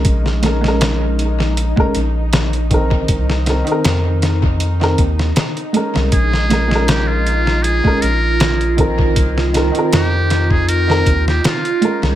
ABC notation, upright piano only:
X:1
M:4/4
L:1/16
Q:"Swing 16ths" 1/4=79
K:Bbdor
V:1 name="Upright piano"
[A,DB]2 [A,DB] [A,DB]6 [A,DB] z4 [E,CB]2- | [E,CB]2 [E,CB] [E,CB]6 [E,CB] z4 [A,DB]2- | [A,DB]2 [A,DB] [A,DB]6 [A,DB] z4 [E,CB]2- | [E,CB]2 [E,CB] [E,CB]6 [E,CB] z4 [A,DB]2 |]